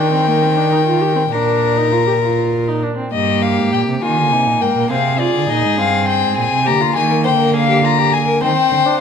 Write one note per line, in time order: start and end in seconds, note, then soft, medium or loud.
0.00 1.29 D#3 medium
0.00 0.11 D4 medium
0.00 1.29 A#4 medium
0.00 1.33 G5 medium
0.12 0.29 C4 medium
0.27 0.44 A#3 medium
0.42 0.58 C4 medium
0.56 0.71 D4 medium
0.72 0.78 D#4 medium
0.87 1.03 F4 medium
1.01 1.15 G4 medium
1.16 1.22 C4 medium
1.31 2.80 A#2 medium
1.31 1.79 D4 medium
1.31 2.80 A#4 medium
1.31 2.83 A#5 medium
1.77 1.93 D#4 medium
1.92 2.06 F4 medium
2.07 2.13 G4 medium
2.22 2.69 F4 medium
2.68 2.84 D#4 medium
2.83 2.97 D4 medium
2.97 3.12 C4 medium
3.12 3.59 G2 medium
3.12 3.99 A#3 medium
3.12 4.04 G4 medium
3.12 3.44 D#5 medium
3.42 3.72 F5 medium
3.58 3.74 G#2 medium
3.73 3.87 A#2 medium
3.73 3.81 G5 medium
3.88 4.02 C3 medium
4.02 4.19 D#3 medium
4.02 4.92 A#3 medium
4.02 4.34 F4 medium
4.02 4.63 G#5 medium
4.17 4.33 D3 medium
4.31 4.48 C3 medium
4.31 4.63 D#4 medium
4.47 4.60 A#2 medium
4.61 4.67 G#2 medium
4.61 4.90 A#4 medium
4.61 4.90 G5 medium
4.76 4.90 A#2 medium
4.90 5.34 C3 medium
4.90 5.19 C4 medium
4.90 6.63 G#4 medium
4.90 5.21 F5 medium
5.20 5.48 F4 medium
5.20 5.51 D5 medium
5.34 5.49 D3 medium
5.49 5.66 A#2 medium
5.49 5.80 D#4 medium
5.49 5.79 D#5 medium
5.64 5.81 G#2 medium
5.78 6.25 G2 medium
5.78 6.68 C4 medium
5.78 6.08 F5 medium
6.08 6.36 G5 medium
6.23 6.37 G#2 medium
6.37 6.43 A#2 medium
6.37 6.68 G#5 medium
6.52 6.68 C3 medium
6.66 6.95 D3 medium
6.66 8.43 A#3 medium
6.66 6.83 G4 medium
6.66 6.95 A#5 medium
6.81 6.97 F4 medium
6.95 7.27 D#3 medium
6.95 7.10 G#4 medium
6.95 7.24 G#5 medium
7.10 7.16 A#4 medium
7.24 8.41 D3 medium
7.24 7.30 C5 medium
7.24 7.54 G5 medium
7.40 7.56 A#4 medium
7.54 7.68 G#4 medium
7.54 7.86 F5 medium
7.69 7.83 G4 medium
7.84 8.00 F4 medium
7.84 8.15 A#5 medium
7.99 8.14 G4 medium
8.13 8.27 G#4 medium
8.13 8.42 G#5 medium
8.28 8.42 A#4 medium
8.41 8.50 D#3 medium
8.41 8.87 C4 medium
8.41 9.01 C5 medium
8.41 8.99 G5 medium
8.71 8.79 D3 medium
8.85 8.99 D4 medium